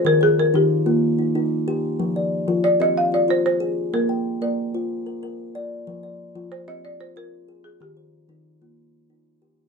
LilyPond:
<<
  \new Staff \with { instrumentName = "Marimba" } { \time 12/8 \key f \dorian \tempo 4. = 124 bes'8 aes'8 bes'8 g'4 r2. r8 | r2 d''8 ees''8 f''8 d''8 c''8 c''4. | bes'4. d''4 r2. r8 | r2 c''8 ees''8 d''8 c''8 bes'4 r8 aes'8 |
g'1~ g'4 r4 | }
  \new Staff \with { instrumentName = "Kalimba" } { \time 12/8 \key f \dorian << { r8 c''4 ees'4 f'4 ees'4. r4 | r8 d''4 f'4 g'4 f'4. r4 | r8 g''4 bes'4 c''4 bes'4. r4 | r8 d''4 f'4 g'4 f'4. r4 |
r8 c''4 ees'4 f'4. r2 | } \\ { ees4 r8 ees4 bes4 r8 ees'4 g'4 | f4 r8 f4 c'4 r8 f'4 aes'4 | bes4 r8 bes4 f'4 r8 bes'4 d''4 | f4 r8 f4 c'4 r8 f'4 aes'4 |
ees4 r8 ees4 bes4 r8 ees'4 g'4 | } >> }
>>